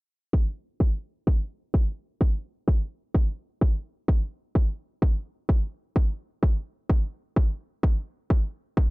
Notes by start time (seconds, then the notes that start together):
0.33 kick
0.80 kick
1.27 kick
1.74 kick
2.21 kick
2.68 kick
3.14 kick
3.61 kick
4.08 kick
4.55 kick
5.02 kick
5.49 kick
5.96 kick
6.43 kick
6.89 kick
7.36 kick
7.83 kick
8.30 kick
8.77 kick